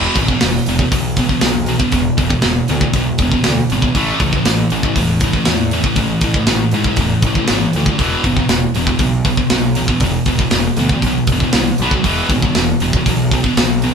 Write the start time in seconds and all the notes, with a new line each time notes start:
Already playing: E2 B2 E3
0.15 G#1 E2 B2, kick, open hi-hat
0.28 E2 B2, kick
0.41 E1 E2 B2, snare, open hi-hat
0.66 E1 E2 B2, open hi-hat
0.79 E2 B2, kick
0.91 B1 E2 B2, kick, open hi-hat
1.17 E2 B2, kick, open hi-hat
1.29 E2 B2, kick
1.41 B1 E2 B2, snare, open hi-hat
1.66 E2 B2, open hi-hat
1.79 E2 B2, kick
1.92 E1 E2 B2, kick, open hi-hat
2.18 E1 E2 B2, kick, open hi-hat
2.29 E2 B2, kick
2.42 E1 E2 B2, snare, open hi-hat
2.68 D2 E2 B2, open hi-hat
2.81 E2 B2, kick
2.93 B1 E2 B2, kick, open hi-hat
3.18 E1 E2 B2, kick, open hi-hat
3.32 E2 B2, kick
3.44 D2 E2 B2, snare, open hi-hat
3.70 G#1 E2 B2, open hi-hat
3.82 E2 B2, kick
3.94 A1 A2 E3 A3, kick, open hi-hat
4.20 C#2 A2 E3, kick, open hi-hat
4.33 A2 E3, kick
4.45 A1 A2 E3, snare, open hi-hat
4.70 A1 A2 E3, open hi-hat
4.83 A2 E3, kick
4.96 E1 A2 E3, kick, open hi-hat
5.20 A2 E3, kick, open hi-hat
5.33 A2 E3, kick
5.45 E2 A2 E3, snare, open hi-hat
5.71 A2 E3, open hi-hat
5.84 A2 E3, kick
5.96 A1 A2 E3, kick, open hi-hat
6.21 A1 A2 E3, kick, open hi-hat
6.34 A2 E3, kick
6.47 A1 A2 E3, snare, open hi-hat
6.71 G#2 A2 E3, open hi-hat
6.84 A2 E3, kick
6.96 E1 A2, kick, open hi-hat
7.01 E3
7.22 A1, kick, open hi-hat
7.27 A2 E3
7.35 A2 E3, kick
7.47 G#1 A2 E3, snare, open hi-hat
7.73 D2 A2 E3, open hi-hat
7.86 A2 E3, kick
7.99 E1 E2 B2 E3, kick, open hi-hat
8.24 G#1 E2 B2, kick, open hi-hat
8.37 E2 B2, kick
8.49 E1 E2 B2, snare, open hi-hat
8.75 E1 E2 B2, open hi-hat
8.87 E2 B2, kick
8.99 B1 E2 B2, kick, open hi-hat
9.25 E2 B2, kick, open hi-hat
9.37 E2 B2, kick
9.50 B1 E2 B2, snare, open hi-hat
9.75 E2 B2, open hi-hat
9.88 E2 B2, kick
10.00 E1 E2, kick, open hi-hat
10.04 B2
10.26 E1 E2 B2, kick, open hi-hat
10.39 E2 B2, kick
10.51 E1 E2 B2, snare, open hi-hat
10.77 D2 E2 B2, open hi-hat
10.89 E2 B2, kick
11.02 B1, kick, open hi-hat
11.06 E2 B2
11.27 E1, kick, open hi-hat
11.32 E2 B2
11.40 E2 B2, kick
11.53 C2 E2 B2, snare, open hi-hat
11.78 B1 B2, open hi-hat
11.82 F#3 B3
11.91 B2 F#3, kick
12.04 E1 E2 B2 E3, kick, open hi-hat
12.29 G#1 E2 B2, kick, open hi-hat
12.42 E2 B2, kick
12.55 E1 E2 B2, snare, open hi-hat
12.80 E1 E2 B2, open hi-hat
12.93 E2 B2, kick
13.06 B1 E2 B2, kick, open hi-hat
13.31 E2 B2, kick, open hi-hat
13.44 E2 B2, kick
13.57 B1 E2 B2, snare, open hi-hat
13.82 E2 B2, open hi-hat